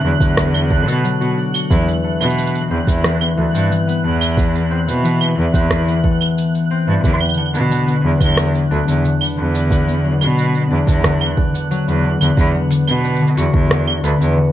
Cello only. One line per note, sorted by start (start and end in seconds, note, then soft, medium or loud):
0.04 0.15 E2 medium
0.20 0.89 E2 medium
0.87 0.98 B2 loud
1.20 1.32 B2 medium
1.71 1.82 E2 medium
2.21 2.62 B2 medium
2.71 2.82 E2 medium
2.87 3.28 E2 medium
3.37 3.48 D2 medium
3.54 3.65 G2 medium
4.04 4.78 E2 medium
4.87 5.28 B2 medium
5.38 5.49 E2 medium
5.54 5.95 E2 medium
6.88 6.98 G2 medium
7.04 7.15 E2 loud
7.54 7.95 B2 medium
8.04 8.15 E2 medium
8.21 8.62 E2 medium
8.71 8.82 D2 medium
8.88 8.99 E2 medium
9.37 10.12 E2 medium
10.21 10.62 B2 medium
10.71 10.82 E2 medium
10.87 11.28 E2 medium
11.88 12.09 E2 medium
12.21 12.32 E2 medium
12.37 12.48 E2 loud
12.88 13.28 B2 medium
13.38 13.49 E2 medium
13.54 13.95 E2 medium
14.04 14.15 D2 medium
14.21 14.32 E2 medium